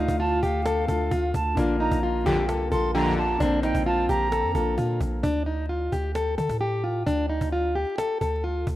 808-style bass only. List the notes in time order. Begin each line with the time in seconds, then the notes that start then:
0.08 D2
0.43 D2
0.88 D2
1.11 D2
1.34 D2
1.57 A#1
1.91 A#1
2.26 A#1
2.49 C2
2.72 A#1
3.40 A#1
3.75 A#1
4.09 A#1
4.43 F2
4.55 A#1
4.78 A#2
5.01 A#1
5.24 D2
5.92 D2
6.38 D3
6.49 A2
7.07 D2
7.41 D2
8.21 D2
8.67 D2